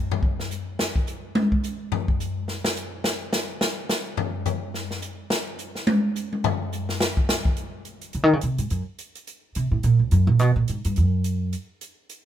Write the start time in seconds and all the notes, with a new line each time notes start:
0.11 floor tom
0.23 kick
0.39 snare
0.51 hi-hat pedal
0.79 snare
0.96 kick
1.07 hi-hat pedal
1.35 high tom
1.52 kick
1.63 hi-hat pedal
1.92 floor tom
2.08 kick
2.20 hi-hat pedal
2.48 snare
2.64 snare
2.76 hi-hat pedal
3.04 snare
3.33 snare, hi-hat pedal
3.61 snare
3.89 snare, hi-hat pedal
4.17 floor tom
4.46 floor tom, hi-hat pedal
4.74 snare
4.91 snare
5.02 hi-hat pedal
5.30 snare
5.59 hi-hat pedal
5.75 snare
5.87 high tom
6.16 hi-hat pedal
6.33 high tom
6.44 floor tom
6.72 hi-hat pedal
6.89 snare
7.00 snare
7.17 kick
7.29 snare, hi-hat pedal
7.45 kick
7.57 closed hi-hat
7.85 closed hi-hat
8.01 closed hi-hat
8.13 C#3, closed hi-hat
8.23 D#3
8.33 C#3
8.41 C3, closed hi-hat
8.58 G#2, closed hi-hat
8.70 F#2, closed hi-hat
8.99 closed hi-hat
9.15 closed hi-hat
9.27 closed hi-hat
9.55 C3, closed hi-hat
9.71 A2
9.83 A#2, closed hi-hat
9.99 C#2
10.11 F#2, closed hi-hat
10.27 A#2
10.39 B2, closed hi-hat
10.56 A#2
10.68 G#2, closed hi-hat
10.85 G2, closed hi-hat
10.96 F#2, closed hi-hat
11.24 closed hi-hat
11.53 closed hi-hat
11.81 closed hi-hat
12.10 closed hi-hat